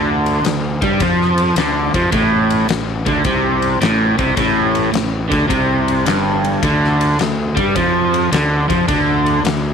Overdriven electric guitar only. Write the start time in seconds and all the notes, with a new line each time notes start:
Already playing: D3
0.46 D3
0.82 G3
1.01 F3
1.57 D3
1.95 F3
2.12 A2
2.69 A2
3.06 D3
3.25 C3
3.81 A2
4.18 C3
4.36 A2
4.93 A2
5.30 D3
5.48 C3
6.06 G2
6.63 D3
7.20 D3
7.56 G3
7.75 F3
8.32 D3
8.69 F3
8.88 D3
9.45 D3